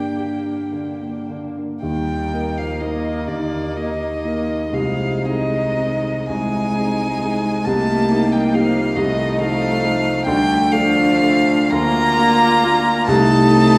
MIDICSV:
0, 0, Header, 1, 6, 480
1, 0, Start_track
1, 0, Tempo, 1113173
1, 792, Time_signature, 6, 3, 24, 8
1, 792, Tempo, 969305
1, 2232, Tempo, 1013514
1, 3192, Tempo, 874636
1, 5112, Tempo, 960000
1, 6072, Tempo, 895522
1, 6552, Tempo, 963082
1, 6898, End_track
2, 0, Start_track
2, 0, Title_t, "Violin"
2, 0, Program_c, 0, 40
2, 0, Note_on_c, 0, 79, 64
2, 561, Note_off_c, 0, 79, 0
2, 787, Note_on_c, 0, 79, 71
2, 1161, Note_on_c, 0, 77, 61
2, 1168, Note_off_c, 0, 79, 0
2, 1271, Note_on_c, 0, 75, 56
2, 1279, Note_off_c, 0, 77, 0
2, 1504, Note_on_c, 0, 74, 64
2, 1512, Note_off_c, 0, 75, 0
2, 1750, Note_on_c, 0, 75, 69
2, 1757, Note_off_c, 0, 74, 0
2, 2230, Note_on_c, 0, 77, 75
2, 2237, Note_off_c, 0, 75, 0
2, 2472, Note_on_c, 0, 75, 74
2, 2479, Note_off_c, 0, 77, 0
2, 2961, Note_off_c, 0, 75, 0
2, 2964, Note_on_c, 0, 80, 90
2, 3673, Note_on_c, 0, 81, 95
2, 3681, Note_off_c, 0, 80, 0
2, 4045, Note_on_c, 0, 79, 76
2, 4053, Note_off_c, 0, 81, 0
2, 4165, Note_on_c, 0, 77, 84
2, 4173, Note_off_c, 0, 79, 0
2, 4396, Note_on_c, 0, 75, 95
2, 4404, Note_off_c, 0, 77, 0
2, 4631, Note_on_c, 0, 77, 100
2, 4640, Note_off_c, 0, 75, 0
2, 5102, Note_off_c, 0, 77, 0
2, 5105, Note_on_c, 0, 79, 111
2, 5336, Note_on_c, 0, 77, 108
2, 5344, Note_off_c, 0, 79, 0
2, 5831, Note_on_c, 0, 82, 127
2, 5839, Note_off_c, 0, 77, 0
2, 6543, Note_off_c, 0, 82, 0
2, 6547, Note_on_c, 0, 81, 127
2, 6898, Note_off_c, 0, 81, 0
2, 6898, End_track
3, 0, Start_track
3, 0, Title_t, "Violin"
3, 0, Program_c, 1, 40
3, 0, Note_on_c, 1, 62, 50
3, 685, Note_off_c, 1, 62, 0
3, 795, Note_on_c, 1, 63, 47
3, 2213, Note_off_c, 1, 63, 0
3, 2230, Note_on_c, 1, 63, 57
3, 2952, Note_off_c, 1, 63, 0
3, 2968, Note_on_c, 1, 63, 62
3, 3668, Note_off_c, 1, 63, 0
3, 3676, Note_on_c, 1, 63, 67
3, 4378, Note_off_c, 1, 63, 0
3, 4392, Note_on_c, 1, 63, 78
3, 5095, Note_off_c, 1, 63, 0
3, 5106, Note_on_c, 1, 62, 82
3, 5819, Note_off_c, 1, 62, 0
3, 5838, Note_on_c, 1, 65, 89
3, 6538, Note_off_c, 1, 65, 0
3, 6556, Note_on_c, 1, 69, 92
3, 6898, Note_off_c, 1, 69, 0
3, 6898, End_track
4, 0, Start_track
4, 0, Title_t, "Grand piano"
4, 0, Program_c, 2, 0
4, 0, Control_c, 2, 64, 127
4, 0, Note_on_c, 2, 43, 42
4, 0, Note_on_c, 2, 50, 30
4, 0, Note_on_c, 2, 58, 33
4, 0, Note_on_c, 2, 62, 29
4, 0, Note_on_c, 2, 67, 32
4, 70, Note_off_c, 2, 67, 0
4, 70, Note_on_c, 2, 67, 35
4, 143, Note_off_c, 2, 62, 0
4, 192, Note_on_c, 2, 62, 28
4, 264, Note_off_c, 2, 67, 0
4, 314, Note_off_c, 2, 50, 0
4, 314, Note_on_c, 2, 50, 28
4, 387, Note_off_c, 2, 62, 0
4, 438, Note_off_c, 2, 58, 0
4, 438, Note_on_c, 2, 58, 27
4, 511, Note_off_c, 2, 50, 0
4, 558, Note_on_c, 2, 50, 29
4, 634, Note_off_c, 2, 58, 0
4, 678, Note_on_c, 2, 58, 31
4, 747, Note_off_c, 2, 50, 0
4, 775, Note_off_c, 2, 43, 0
4, 786, Note_on_c, 2, 51, 47
4, 787, Note_on_c, 2, 39, 47
4, 791, Note_off_c, 2, 58, 0
4, 802, Control_c, 2, 64, 0
4, 872, Control_c, 2, 64, 127
4, 1027, Note_off_c, 2, 39, 0
4, 1027, Note_off_c, 2, 51, 0
4, 1036, Note_on_c, 2, 58, 38
4, 1037, Note_on_c, 2, 63, 39
4, 1039, Note_on_c, 2, 70, 41
4, 1255, Note_off_c, 2, 58, 0
4, 1255, Note_off_c, 2, 63, 0
4, 1256, Note_off_c, 2, 70, 0
4, 1272, Note_on_c, 2, 58, 37
4, 1273, Note_on_c, 2, 63, 35
4, 1277, Note_on_c, 2, 70, 38
4, 1488, Note_off_c, 2, 58, 0
4, 1489, Note_off_c, 2, 63, 0
4, 1491, Note_off_c, 2, 70, 0
4, 1505, Note_on_c, 2, 39, 49
4, 1505, Note_on_c, 2, 51, 50
4, 1741, Note_off_c, 2, 39, 0
4, 1741, Note_off_c, 2, 51, 0
4, 1748, Note_on_c, 2, 58, 38
4, 1750, Note_on_c, 2, 63, 35
4, 1750, Note_on_c, 2, 70, 40
4, 1972, Note_off_c, 2, 58, 0
4, 1973, Note_off_c, 2, 63, 0
4, 1973, Note_off_c, 2, 70, 0
4, 1986, Note_on_c, 2, 58, 37
4, 1990, Note_on_c, 2, 63, 38
4, 1990, Note_on_c, 2, 70, 39
4, 2208, Note_off_c, 2, 58, 0
4, 2210, Note_off_c, 2, 63, 0
4, 2210, Note_off_c, 2, 70, 0
4, 2224, Note_on_c, 2, 36, 54
4, 2226, Note_on_c, 2, 48, 51
4, 2240, Control_c, 2, 64, 0
4, 2334, Control_c, 2, 64, 127
4, 2458, Note_off_c, 2, 36, 0
4, 2459, Note_off_c, 2, 48, 0
4, 2468, Note_on_c, 2, 60, 41
4, 2468, Note_on_c, 2, 63, 43
4, 2471, Note_on_c, 2, 68, 46
4, 2703, Note_off_c, 2, 60, 0
4, 2703, Note_off_c, 2, 63, 0
4, 2704, Note_off_c, 2, 68, 0
4, 2719, Note_on_c, 2, 60, 41
4, 2722, Note_on_c, 2, 63, 39
4, 2724, Note_on_c, 2, 68, 42
4, 2947, Note_off_c, 2, 60, 0
4, 2948, Note_off_c, 2, 63, 0
4, 2949, Note_off_c, 2, 68, 0
4, 2965, Note_on_c, 2, 48, 54
4, 2966, Note_on_c, 2, 36, 52
4, 3184, Note_off_c, 2, 36, 0
4, 3184, Note_off_c, 2, 48, 0
4, 3193, Note_on_c, 2, 60, 46
4, 3194, Note_on_c, 2, 63, 45
4, 3196, Note_on_c, 2, 68, 46
4, 3418, Note_off_c, 2, 60, 0
4, 3418, Note_off_c, 2, 63, 0
4, 3419, Note_off_c, 2, 68, 0
4, 3440, Note_on_c, 2, 60, 46
4, 3444, Note_on_c, 2, 63, 43
4, 3446, Note_on_c, 2, 68, 47
4, 3662, Note_off_c, 2, 60, 0
4, 3664, Note_off_c, 2, 63, 0
4, 3664, Note_off_c, 2, 68, 0
4, 3683, Note_on_c, 2, 36, 66
4, 3684, Note_on_c, 2, 48, 59
4, 3692, Control_c, 2, 64, 0
4, 3791, Control_c, 2, 64, 127
4, 3916, Note_off_c, 2, 36, 0
4, 3916, Note_off_c, 2, 48, 0
4, 3926, Note_on_c, 2, 58, 53
4, 3929, Note_on_c, 2, 63, 51
4, 3929, Note_on_c, 2, 67, 56
4, 4139, Note_off_c, 2, 58, 0
4, 4140, Note_off_c, 2, 63, 0
4, 4140, Note_off_c, 2, 67, 0
4, 4159, Note_on_c, 2, 58, 48
4, 4162, Note_on_c, 2, 63, 49
4, 4164, Note_on_c, 2, 67, 52
4, 4373, Note_off_c, 2, 58, 0
4, 4375, Note_off_c, 2, 63, 0
4, 4376, Note_off_c, 2, 67, 0
4, 4396, Note_on_c, 2, 36, 72
4, 4397, Note_on_c, 2, 48, 64
4, 4403, Control_c, 2, 64, 0
4, 4495, Control_c, 2, 64, 127
4, 4628, Note_off_c, 2, 36, 0
4, 4628, Note_off_c, 2, 48, 0
4, 4635, Note_on_c, 2, 57, 52
4, 4638, Note_on_c, 2, 63, 52
4, 4639, Note_on_c, 2, 69, 58
4, 4851, Note_off_c, 2, 57, 0
4, 4853, Note_off_c, 2, 63, 0
4, 4854, Note_off_c, 2, 69, 0
4, 4876, Note_on_c, 2, 57, 52
4, 4879, Note_on_c, 2, 63, 56
4, 4881, Note_on_c, 2, 69, 57
4, 5090, Note_off_c, 2, 57, 0
4, 5091, Note_off_c, 2, 63, 0
4, 5092, Note_off_c, 2, 69, 0
4, 5108, Note_on_c, 2, 50, 76
4, 5109, Note_on_c, 2, 38, 79
4, 5119, Control_c, 2, 64, 0
4, 5184, Control_c, 2, 64, 127
4, 5332, Note_off_c, 2, 38, 0
4, 5332, Note_off_c, 2, 50, 0
4, 5339, Note_on_c, 2, 57, 57
4, 5342, Note_on_c, 2, 62, 61
4, 5344, Note_on_c, 2, 69, 66
4, 5567, Note_off_c, 2, 57, 0
4, 5569, Note_off_c, 2, 62, 0
4, 5570, Note_off_c, 2, 69, 0
4, 5586, Note_on_c, 2, 57, 57
4, 5589, Note_on_c, 2, 62, 58
4, 5591, Note_on_c, 2, 69, 60
4, 5815, Note_off_c, 2, 57, 0
4, 5817, Note_off_c, 2, 62, 0
4, 5818, Note_off_c, 2, 69, 0
4, 5834, Note_on_c, 2, 50, 74
4, 5835, Note_on_c, 2, 38, 79
4, 5844, Control_c, 2, 64, 0
4, 5939, Control_c, 2, 64, 127
4, 6063, Note_off_c, 2, 50, 0
4, 6064, Note_off_c, 2, 38, 0
4, 6072, Note_on_c, 2, 58, 60
4, 6074, Note_on_c, 2, 62, 59
4, 6077, Note_on_c, 2, 65, 62
4, 6291, Note_off_c, 2, 58, 0
4, 6292, Note_off_c, 2, 62, 0
4, 6293, Note_off_c, 2, 65, 0
4, 6314, Note_on_c, 2, 58, 59
4, 6315, Note_on_c, 2, 62, 62
4, 6317, Note_on_c, 2, 65, 65
4, 6531, Note_off_c, 2, 58, 0
4, 6532, Note_off_c, 2, 62, 0
4, 6533, Note_off_c, 2, 65, 0
4, 6550, Note_on_c, 2, 36, 91
4, 6552, Note_on_c, 2, 48, 83
4, 6561, Control_c, 2, 64, 0
4, 6654, Control_c, 2, 64, 127
4, 6780, Note_off_c, 2, 36, 0
4, 6781, Note_off_c, 2, 48, 0
4, 6789, Note_on_c, 2, 60, 66
4, 6791, Note_on_c, 2, 63, 63
4, 6793, Note_on_c, 2, 69, 68
4, 6898, Note_off_c, 2, 60, 0
4, 6898, Note_off_c, 2, 63, 0
4, 6898, Note_off_c, 2, 69, 0
4, 6898, End_track
5, 0, Start_track
5, 0, Title_t, "Viola"
5, 0, Program_c, 3, 41
5, 0, Note_on_c, 3, 58, 44
5, 682, Note_off_c, 3, 58, 0
5, 788, Note_on_c, 3, 58, 57
5, 2209, Note_off_c, 3, 58, 0
5, 2224, Note_on_c, 3, 56, 61
5, 2949, Note_off_c, 3, 56, 0
5, 2963, Note_on_c, 3, 56, 70
5, 3673, Note_on_c, 3, 58, 67
5, 3681, Note_off_c, 3, 56, 0
5, 4388, Note_on_c, 3, 57, 87
5, 4396, Note_off_c, 3, 58, 0
5, 5107, Note_off_c, 3, 57, 0
5, 5111, Note_on_c, 3, 57, 83
5, 5822, Note_off_c, 3, 57, 0
5, 5837, Note_on_c, 3, 58, 99
5, 6553, Note_on_c, 3, 63, 100
5, 6560, Note_off_c, 3, 58, 0
5, 6898, Note_off_c, 3, 63, 0
5, 6898, End_track
6, 0, Start_track
6, 0, Title_t, "Cello"
6, 0, Program_c, 4, 42
6, 0, Note_on_c, 4, 67, 47
6, 437, Note_off_c, 4, 67, 0
6, 795, Note_on_c, 4, 55, 56
6, 1155, Note_on_c, 4, 53, 52
6, 1162, Note_off_c, 4, 55, 0
6, 1271, Note_on_c, 4, 51, 51
6, 1279, Note_off_c, 4, 53, 0
6, 1501, Note_on_c, 4, 50, 55
6, 1509, Note_off_c, 4, 51, 0
6, 1739, Note_on_c, 4, 51, 59
6, 1746, Note_off_c, 4, 50, 0
6, 2222, Note_off_c, 4, 51, 0
6, 2225, Note_on_c, 4, 53, 61
6, 2463, Note_on_c, 4, 51, 64
6, 2470, Note_off_c, 4, 53, 0
6, 2964, Note_on_c, 4, 56, 78
6, 2971, Note_off_c, 4, 51, 0
6, 3682, Note_on_c, 4, 57, 85
6, 3690, Note_off_c, 4, 56, 0
6, 4035, Note_off_c, 4, 57, 0
6, 4038, Note_on_c, 4, 55, 61
6, 4155, Note_off_c, 4, 55, 0
6, 4158, Note_on_c, 4, 53, 73
6, 4386, Note_off_c, 4, 53, 0
6, 4389, Note_on_c, 4, 51, 73
6, 4634, Note_on_c, 4, 53, 81
6, 4642, Note_off_c, 4, 51, 0
6, 5109, Note_off_c, 4, 53, 0
6, 5112, Note_on_c, 4, 55, 85
6, 5341, Note_on_c, 4, 53, 99
6, 5349, Note_off_c, 4, 55, 0
6, 5839, Note_on_c, 4, 58, 114
6, 5847, Note_off_c, 4, 53, 0
6, 6549, Note_off_c, 4, 58, 0
6, 6553, Note_on_c, 4, 57, 114
6, 6898, Note_off_c, 4, 57, 0
6, 6898, End_track
0, 0, End_of_file